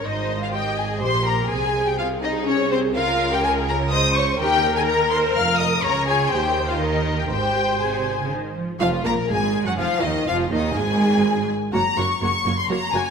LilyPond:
<<
  \new Staff \with { instrumentName = "Violin section" } { \time 3/4 \key aes \major \tempo 4 = 124 ees''8. f''16 g''8 aes''8 c'''8 bes''8 | aes''8. g''16 f''8 ees''8 des''8 c''8 | f''8. g''16 aes''8 bes''8 ees'''8 des'''8 | g''8. aes''16 bes''8 c'''8 f'''8 ees'''8 |
bes''8 aes''8 g''8. f''16 ees''8. g''16 | g''4 aes''4 r4 | \key ges \lydian f'8 bes'8 aes'8. ges'16 f'8 ees'8 | f'8 ees'8 aes'4. r8 |
des''8 des''8 des''8 des''8 des''8 des''8 | }
  \new Staff \with { instrumentName = "Violin section" } { \time 3/4 \key aes \major ees'8. f'16 g'8 aes'8 c''8 bes'8 | aes'8. g'16 f'8 ees'8 des'8 c'8 | f'8. g'16 aes'8 bes'8 ees''8 des''8 | g'8. aes'16 bes'8 c''8 f''8 ees''8 |
bes'8 aes'8 g'8. f'16 ees'8. g'16 | g'4 aes'4 r4 | \key ges \lydian f''8 bes''8 aes''8. ges''16 f''8 ees''8 | f''8 ees''8 aes''4. r8 |
bes''8 des'''8 des'''8. c'''16 bes''8 aes''8 | }
  \new Staff \with { instrumentName = "Viola section" } { \time 3/4 \key aes \major c''4 ees''4 g'4 | aes'4 aes'2 | bes'2 c''4 | bes'2. |
des''4 c''4 bes'4 | c''2~ c''8 r8 | \key ges \lydian f8 bes8 aes8. ges16 f8 ees8 | f8 ees8 aes4. r8 |
<bes ges'>8 <bes ges'>8 <bes ges'>8 <bes ges'>8 <bes ges'>8 <bes ges'>8 | }
  \new Staff \with { instrumentName = "Cello section" } { \clef bass \time 3/4 \key aes \major aes,2 bes,4 | c2. | des2. | ees2 f,4 |
des4 ees2 | aes,4 c8. des16 ees8 f8 | \key ges \lydian f,8 bes,8 aes,8. ges,16 f,8 ees,8 | f,8 ees,8 aes,4. r8 |
ges,8 ges,8 ges,8 ges,8 ges,8 ges,8 | }
  \new Staff \with { instrumentName = "Double bass section" } { \clef bass \time 3/4 \key aes \major aes,,2 bes,,4 | c,2. | des,2. | ees,2 f,,4 |
des,4 ees,2 | aes,,2~ aes,,8 r8 | \key ges \lydian f,,8 bes,,8 aes,,8. r16 f,,8 ees,8 | f,,8 ees,8 aes,,4. r8 |
ges,,8 ges,,8 ges,,8 ges,,8 ges,,8 ges,,8 | }
>>